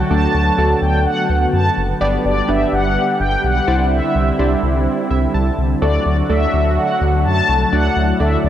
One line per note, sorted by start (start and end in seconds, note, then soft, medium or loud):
0.00 3.64 D3 medium
0.00 1.97 F#3 medium
0.00 1.97 F#4 medium
0.10 0.27 D2 loud
0.10 0.43 A3 medium
0.10 3.64 B3 medium
0.10 0.43 D4 medium
0.10 0.43 F#4 medium
0.10 0.43 A4 medium
0.10 0.43 D5 medium
0.10 0.84 A5 loud
0.34 0.51 D2 loud
0.58 0.75 D2 loud
0.58 1.23 A3 medium
0.58 1.23 D4 medium
0.58 1.23 F#4 medium
0.58 1.23 A4 medium
0.58 1.23 D5 medium
0.81 1.07 D2 medium
0.81 1.04 G5 loud
1.05 1.40 F#5 loud
1.29 1.46 D2 loud
1.41 1.46 F#5 medium
1.53 1.70 F#2 loud
1.53 1.86 A5 medium
1.77 1.94 F#1 loud
2.01 2.18 G1 loud
2.01 5.78 G3 medium
2.01 2.33 B3 medium
2.01 2.33 D4 medium
2.01 2.33 G4 medium
2.01 3.66 G4 medium
2.01 2.33 B4 medium
2.01 2.33 D5 loud
2.25 2.41 G1 loud
2.25 2.49 D5 medium
2.48 2.65 G1 loud
2.48 3.13 B3 medium
2.48 3.13 D4 medium
2.48 3.13 G4 medium
2.48 3.13 B4 medium
2.48 3.13 D5 medium
2.48 2.73 E5 loud
2.72 2.97 G1 loud
2.72 3.21 F#5 loud
3.20 3.37 G1 loud
3.20 3.44 G5 loud
3.44 3.60 B1 loud
3.44 3.93 F#5 loud
3.68 4.01 C2 loud
3.68 8.49 D3 medium
3.68 5.80 C4 medium
3.68 4.25 D4 medium
3.68 5.80 E4 medium
3.68 4.25 E4 medium
3.68 4.25 G4 medium
3.68 4.25 C5 medium
3.68 4.25 D5 medium
3.91 5.30 E5 loud
4.15 4.32 C2 loud
4.39 4.56 C2 loud
4.39 5.04 D4 medium
4.39 5.04 E4 medium
4.39 5.04 G4 medium
4.39 5.04 C5 medium
4.39 5.04 D5 medium
4.63 4.88 C2 loud
5.10 5.27 C2 loud
5.10 5.33 E5 medium
5.34 5.51 C2 loud
5.34 5.79 A5 medium
5.58 5.75 C2 loud
5.82 5.99 D2 loud
5.82 8.49 F#3 medium
5.82 8.49 A3 medium
5.82 6.14 A3 medium
5.82 6.14 D4 medium
5.82 7.70 F#4 medium
5.82 6.14 F#4 medium
5.82 6.14 A4 medium
5.82 6.05 D5 loud
5.82 6.14 D5 medium
6.06 6.22 D2 loud
6.06 6.16 D5 medium
6.29 6.46 D2 loud
6.29 6.94 A3 medium
6.29 6.94 D4 medium
6.29 6.94 F#4 medium
6.29 6.94 A4 medium
6.29 6.94 D5 medium
6.29 6.74 E5 loud
6.53 6.78 D2 loud
6.77 7.22 F#5 loud
7.01 7.26 D2 loud
7.25 7.41 F#2 medium
7.25 7.74 A5 loud
7.49 7.65 C2 medium
7.72 7.89 D2 loud
7.72 8.05 A3 medium
7.72 8.05 D4 medium
7.72 8.49 E4 medium
7.72 8.05 F#4 medium
7.72 8.05 A4 medium
7.72 8.05 D5 medium
7.72 8.17 F#5 loud
7.96 8.13 D2 loud
8.20 8.37 D2 loud
8.20 8.49 A3 medium
8.20 8.49 D4 medium
8.20 8.49 F#4 medium
8.20 8.49 A4 medium
8.20 8.49 D5 medium
8.20 8.45 E5 loud
8.44 8.49 D2 loud
8.44 8.49 D5 medium